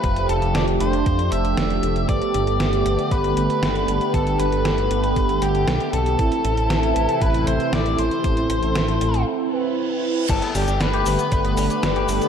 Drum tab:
CC |----------------|----------------|----------------|----------------|
HH |xxxxxxxxxxxxxxxx|xxxxxxxxxxxxxxxx|xxxxxxxxxxxxxxxx|xxxxxxxxxxxxxxxx|
SH |----------------|----------------|----------------|----------------|
SD |----o-------o---|----o-------o---|----o-------o---|----o-------o---|
BD |o-------o-------|o-------o-------|o-------o-------|o-------o-------|

CC |----------------|x---------------|
HH |xxxxxxxx--------|xxoxxxoxxxoxxxox|
SH |----------------|x-xxx-xxx-xxx-xx|
SD |----o-----------|----o-------o---|
BD |o---------------|o-------o-------|